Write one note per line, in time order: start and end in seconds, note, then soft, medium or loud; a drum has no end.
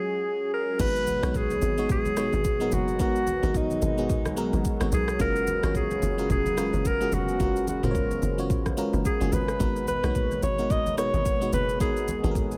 0.00 0.75 F#3 medium
0.00 0.75 G#3 medium
0.00 0.76 G#3 medium
0.00 0.75 C#4 medium
0.00 0.76 F4 medium
0.00 0.76 F#4 medium
0.00 0.53 G#4 loud
0.00 0.75 G#4 medium
0.00 0.76 C#5 medium
0.54 0.78 A#4 loud
0.79 1.20 G#1 loud
0.79 5.16 B2 medium
0.79 11.77 F#3 medium
0.79 1.13 G#3 medium
0.79 5.16 G#3 medium
0.79 1.13 B3 medium
0.79 12.57 B3 medium
0.79 1.14 D#4 medium
0.79 1.14 F#4 medium
0.79 1.14 B4 medium
0.79 1.30 B4 loud
0.79 kick loud
0.79 crash loud
0.79 shaker medium
0.96 shaker medium
1.07 high conga medium
1.07 shaker loud
1.22 1.60 B1 medium
1.22 1.65 G#3 medium
1.22 1.65 B3 medium
1.22 1.65 D#4 medium
1.22 1.65 F#4 medium
1.22 1.66 C#5 medium
1.22 cross-stick loud
1.22 high conga medium
1.22 shaker medium
1.30 1.38 B4 medium
1.34 1.91 G#4 loud
1.34 kick medium
1.34 low conga medium
1.34 shaker medium
1.50 high conga medium
1.50 shaker soft
1.62 1.91 G#1 medium
1.62 high conga medium
1.62 shaker loud
1.78 2.10 G#3 medium
1.78 2.10 B3 medium
1.78 2.10 D#4 medium
1.78 2.10 F#4 medium
1.78 2.11 C#5 medium
1.78 shaker medium
1.89 2.30 F#1 loud
1.89 2.75 G#4 loud
1.89 kick loud
1.89 low conga medium
1.89 shaker medium
2.05 high conga medium
2.05 shaker soft
2.17 2.51 G#3 medium
2.17 2.51 B3 medium
2.17 2.51 D#4 medium
2.17 2.51 F#4 medium
2.17 2.51 C#5 medium
2.17 cross-stick medium
2.17 shaker loud
2.33 2.70 G#1 loud
2.33 high conga medium
2.33 shaker soft
2.44 kick medium
2.44 shaker medium
2.60 2.92 G#3 medium
2.60 2.93 B3 medium
2.60 2.93 D#4 medium
2.60 2.93 F#4 medium
2.60 2.93 A#4 medium
2.60 shaker medium
2.72 3.01 F#1 medium
2.72 3.00 F#4 medium
2.72 high conga medium
2.72 low conga medium
2.72 shaker loud
2.88 shaker soft
2.99 3.40 G#1 loud
2.99 3.33 G#3 medium
2.99 3.33 B3 medium
2.99 3.34 D#4 medium
2.99 3.34 F#4 medium
2.99 3.58 F#4 loud
2.99 3.34 A#4 medium
2.99 kick loud
2.99 shaker medium
3.16 shaker medium
3.27 high conga medium
3.27 shaker medium
3.42 3.80 G#1 medium
3.42 3.85 G#3 medium
3.42 3.85 B3 medium
3.42 3.85 D#4 medium
3.42 3.86 F#4 medium
3.42 3.86 A#4 medium
3.42 high conga medium
3.42 shaker medium
3.54 4.66 D#4 medium
3.54 kick loud
3.54 low conga medium
3.54 shaker medium
3.70 high conga medium
3.70 shaker soft
3.82 4.11 G#1 loud
3.82 high conga medium
3.82 shaker loud
3.98 4.30 G#3 medium
3.98 4.30 B3 medium
3.98 4.30 D#4 medium
3.98 4.31 F#4 medium
3.98 4.31 G#4 medium
3.98 shaker medium
4.09 4.50 B1 medium
4.09 kick loud
4.09 low conga medium
4.09 shaker medium
4.25 cross-stick medium
4.25 high conga medium
4.25 shaker soft
4.37 4.71 G#3 medium
4.37 4.71 B3 medium
4.37 4.71 D#4 medium
4.37 4.71 F#4 medium
4.37 4.71 A#4 loud
4.37 shaker medium
4.53 4.64 G#1 medium
4.53 high conga medium
4.53 shaker soft
4.65 kick loud
4.65 shaker medium
4.80 4.92 G#1 medium
4.80 5.12 G#3 medium
4.80 5.13 B3 medium
4.80 5.13 D#4 medium
4.80 5.13 F#4 medium
4.80 5.13 C#5 medium
4.80 cross-stick loud
4.80 shaker medium
4.92 5.18 B1 medium
4.92 5.19 G#4 loud
4.92 high conga medium
4.92 low conga medium
4.92 shaker loud
5.08 cross-stick medium
5.08 shaker soft
5.19 5.60 F#1 loud
5.19 9.56 C#3 medium
5.19 5.53 G#3 medium
5.19 12.57 G#3 medium
5.19 5.54 C#4 medium
5.19 5.54 F4 medium
5.19 5.54 F#4 medium
5.19 5.54 A#4 medium
5.19 5.72 A#4 loud
5.19 kick loud
5.19 shaker medium
5.36 shaker medium
5.47 high conga medium
5.47 shaker medium
5.63 6.00 G#1 medium
5.63 6.05 G#3 medium
5.63 6.06 C#4 medium
5.63 6.06 F4 medium
5.63 6.06 F#4 medium
5.63 6.06 C#5 medium
5.63 cross-stick loud
5.63 high conga medium
5.63 shaker medium
5.75 6.27 G#4 loud
5.75 kick loud
5.75 low conga medium
5.75 shaker medium
5.91 high conga medium
5.91 shaker soft
6.02 6.28 F#1 medium
6.02 high conga medium
6.02 shaker loud
6.18 6.50 G#3 medium
6.18 6.50 C#4 medium
6.18 6.51 F4 medium
6.18 6.51 F#4 medium
6.18 6.51 A#4 medium
6.18 shaker medium
6.30 6.71 F1 medium
6.30 6.88 G#4 loud
6.30 kick loud
6.30 low conga medium
6.30 shaker medium
6.46 high conga medium
6.46 shaker soft
6.57 6.91 G#3 medium
6.57 6.91 C#4 medium
6.57 6.91 F4 medium
6.57 6.92 F#4 medium
6.57 6.92 A#4 medium
6.57 cross-stick medium
6.57 shaker loud
6.73 7.10 F#1 medium
6.73 high conga medium
6.73 shaker soft
6.85 7.16 A#4 loud
6.85 kick medium
6.85 shaker medium
7.00 7.33 G#3 medium
7.00 7.33 C#4 medium
7.00 7.33 F4 medium
7.00 7.33 F#4 medium
7.00 7.34 G#4 medium
7.00 shaker medium
7.12 7.38 F1 medium
7.12 7.68 F#4 loud
7.12 high conga medium
7.12 low conga medium
7.12 shaker loud
7.28 shaker soft
7.39 7.81 F#1 loud
7.39 7.74 G#3 medium
7.39 7.74 C#4 medium
7.39 7.74 F4 medium
7.39 7.74 F#4 medium
7.39 7.74 A#4 medium
7.39 kick loud
7.39 shaker medium
7.56 shaker medium
7.67 7.86 F#4 medium
7.67 high conga medium
7.67 shaker medium
7.83 8.20 F#1 medium
7.83 8.25 G#3 medium
7.83 8.26 C#4 medium
7.83 8.26 F4 medium
7.83 8.26 F#4 medium
7.83 8.39 A#4 medium
7.83 7.89 C5 medium
7.83 mid tom medium
7.83 high conga medium
7.83 shaker medium
7.91 8.29 C#5 medium
7.91 low conga medium
7.95 kick loud
7.95 shaker medium
8.11 high conga medium
8.11 shaker soft
8.22 8.51 F#1 loud
8.22 high conga medium
8.22 shaker medium
8.38 8.70 G#3 medium
8.38 8.71 C#4 medium
8.38 8.71 F4 medium
8.38 8.71 F#4 medium
8.38 8.71 C#5 medium
8.38 shaker medium
8.50 8.91 G#1 medium
8.50 kick loud
8.50 low conga medium
8.50 shaker medium
8.66 kick medium
8.66 cross-stick medium
8.66 high conga medium
8.66 shaker soft
8.77 9.11 G#3 medium
8.77 9.11 C#4 medium
8.77 9.12 F4 medium
8.77 9.12 F#4 medium
8.77 9.12 A#4 loud
8.77 shaker loud
8.93 9.04 F#1 loud
8.93 high conga medium
8.93 shaker soft
9.05 9.35 G#4 medium
9.05 kick medium
9.05 shaker medium
9.20 9.32 F#1 loud
9.20 9.53 G#3 medium
9.20 9.53 C#4 medium
9.20 9.53 F4 medium
9.20 9.53 F#4 medium
9.20 9.54 G#4 medium
9.20 shaker medium
9.32 9.58 G#1 medium
9.32 9.87 B4 medium
9.32 high conga medium
9.32 low conga medium
9.32 shaker loud
9.48 cross-stick medium
9.48 shaker soft
9.59 10.01 G#1 loud
9.59 12.57 B2 medium
9.59 9.94 G#3 medium
9.59 9.94 B3 medium
9.59 9.94 D#4 medium
9.59 9.94 F#4 medium
9.59 9.94 A#4 medium
9.59 kick loud
9.59 shaker medium
9.76 shaker medium
9.87 10.39 B4 loud
9.87 high conga medium
9.87 shaker medium
10.03 10.40 B1 medium
10.03 10.46 G#3 medium
10.03 10.09 A#3 medium
10.03 10.46 D#4 medium
10.03 10.46 F#4 medium
10.03 10.46 C#5 medium
10.03 cross-stick loud
10.03 high conga medium
10.03 shaker medium
10.10 10.49 B3 medium
10.15 kick loud
10.15 low conga medium
10.15 shaker medium
10.31 high conga medium
10.31 shaker soft
10.42 10.72 G#1 medium
10.42 10.73 C#5 loud
10.42 high conga medium
10.42 shaker loud
10.58 10.91 G#3 medium
10.58 10.91 B3 medium
10.58 10.91 D#4 medium
10.58 10.91 F#4 medium
10.58 10.91 A#4 medium
10.58 shaker medium
10.70 11.11 F#1 medium
10.70 10.98 D#5 loud
10.70 kick loud
10.70 low conga medium
10.70 shaker medium
10.86 high conga medium
10.86 shaker soft
10.97 11.31 G#3 medium
10.97 11.32 B3 medium
10.97 11.32 D#4 medium
10.97 11.32 F#4 medium
10.97 11.32 B4 medium
10.97 11.49 C#5 loud
10.97 cross-stick medium
10.97 shaker loud
11.14 11.50 G#1 medium
11.14 high conga medium
11.14 shaker soft
11.25 kick medium
11.25 shaker medium
11.41 11.73 G#3 medium
11.41 11.73 B3 medium
11.41 11.73 D#4 medium
11.41 11.74 F#4 medium
11.41 11.74 C#5 medium
11.41 shaker medium
11.53 11.82 F#1 medium
11.53 11.79 B4 medium
11.53 high conga medium
11.53 low conga medium
11.53 shaker loud
11.69 shaker soft
11.80 12.21 G#1 loud
11.80 12.14 G#3 medium
11.80 12.14 B3 medium
11.80 12.14 D#4 medium
11.80 12.14 F#4 medium
11.80 12.32 G#4 medium
11.80 12.57 G#4 medium
11.80 12.15 A#4 medium
11.80 kick loud
11.80 shaker medium
11.97 shaker medium
12.08 high conga medium
12.08 shaker medium
12.23 12.57 G#1 medium
12.23 12.57 G#3 medium
12.23 12.57 B3 medium
12.23 12.57 D#4 medium
12.23 12.57 F#4 medium
12.23 12.30 A4 medium
12.23 high conga medium
12.23 shaker medium
12.31 12.57 A#4 medium
12.31 low conga medium
12.35 kick loud
12.35 shaker medium
12.51 high conga medium
12.51 shaker soft